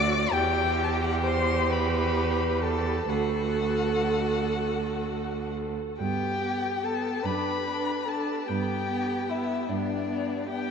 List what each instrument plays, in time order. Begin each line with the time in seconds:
Already playing: cello D2, viola F#4, violin D5 D6
0.33 cello E2, violin G4 G5, viola G4
0.84 violin A5
0.95 violin G5
1.04 violin F#5
1.15 violin G5
1.23 violin C5 C6
1.69 violin B4 B5
2.62 violin A4 A5
3.09 cello D2, violin F#4 F#5, viola A4
5.99 cello G2, viola B3, violin G4 G5
6.43 viola B3
6.83 viola B3, violin A4 A5
7.23 cello F#2, viola D4, violin B4 B5
7.66 viola D4
8.05 viola D4, violin A4 A5
8.47 cello G2, viola B3, violin G4 G5
8.91 viola B3
9.29 viola B3, violin E4 E5
9.69 cello G2, viola B3, violin D4 D5
10.08 viola B3
10.47 viola B3, violin G4 G5